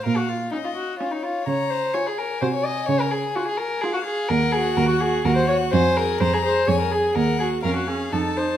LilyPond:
<<
  \new Staff \with { instrumentName = "Violin" } { \time 3/4 \key bes \minor \tempo 4 = 126 f''4 ees''4 des''4 | bes''4 aes''2~ | aes''2 f''4 | ges''2 ges''4 |
aes''4 bes''4 aes''4 | ges''4 f''4 a''4 | }
  \new Staff \with { instrumentName = "Violin" } { \time 3/4 \key bes \minor bes'16 ges'16 f'8 ees'16 f'16 ges'8 f'16 ees'16 f'8 | des''8 c''8 des''16 aes'16 bes'8 c''16 des''16 ees''8 | des''16 bes'16 aes'8 ges'16 aes'16 bes'8 aes'16 ges'16 aes'8 | bes'8 aes'8 bes'16 ges'16 aes'8 bes'16 c''16 des''8 |
c''8 bes'8 c''16 aes'16 c''8 des''16 bes'16 aes'8 | bes'8 aes'8 bes'16 ges'16 aes'8 a'8 c''8 | }
  \new Staff \with { instrumentName = "Viola" } { \time 3/4 \key bes \minor r4 des'4 des'4 | r4 f'4 ges'4 | r4 f'4 f'4 | r8 ges'4 ges'8 ges'8 ges'8 |
r8 aes'4 aes'8 aes'8 aes'8 | r8 ges'8 des'8 des'8 ees'8 ees'8 | }
  \new Staff \with { instrumentName = "Cello" } { \clef bass \time 3/4 \key bes \minor bes,4 r2 | des4 r4 c4 | des4 r2 | ees,4 ees,4 ees,4 |
f,4 f,4 f,4 | ees,4 f,4 f,4 | }
>>